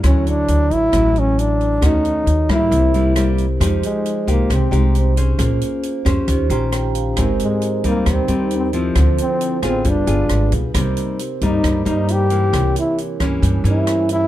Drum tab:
HH |xxxxxxxx|xxxxxxxx|xxxxxxxx|xxxxxxxx|
SD |r---r---|r--r--r-|r---r---|r--r--r-|
BD |o---o---|o--oo---|o--oo---|o--oo---|

HH |xxxxxxxx|xxxxxxxx|xxxxxxxx|xxxxxxxx|
SD |r---r---|r--r--r-|r---r---|r--r--r-|
BD |o--oo---|o---o--o|o--oo---|o--oo---|